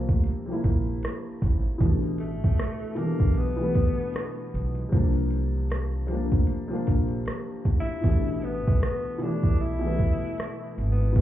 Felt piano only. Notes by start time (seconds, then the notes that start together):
Already playing: C3 F3 G3 A#3 C4 D4
0.46 C3 F3 G3
0.51 A#3 E4
1.78 B2 E3 G3
1.83 A3 D4
2.95 B2 E3 G3
3.00 D4 A4
3.57 B2 E3 G3
3.62 A3 B3
4.89 C3 F3 G3
4.95 A#3 D4
6.07 C3 F3 G3
6.12 A#3 D4
6.68 C3 F3 G3
6.73 A#3 D4
8.01 B2 E3 G3
8.07 A3 D4
9.18 B2 E3 G3
9.24 A3 E4
9.79 B2 E3 G3
9.85 A3 B3
11.13 B2 E3 G3
11.18 A3